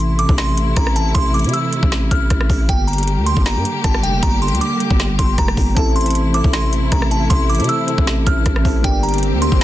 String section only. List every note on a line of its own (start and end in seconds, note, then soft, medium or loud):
0.00 2.66 C3 medium
0.00 2.66 E3 medium
0.00 2.66 A3 medium
0.00 2.66 E4 medium
2.69 5.73 D3 medium
2.69 5.73 G3 medium
2.69 5.73 A#3 medium
2.69 5.73 G4 medium
5.76 8.81 C3 medium
5.76 8.81 E3 medium
5.76 8.81 A3 medium
5.76 8.81 E4 medium
8.84 9.64 D3 medium
8.84 9.64 G3 medium
8.84 9.64 A#3 medium
8.84 9.64 G4 medium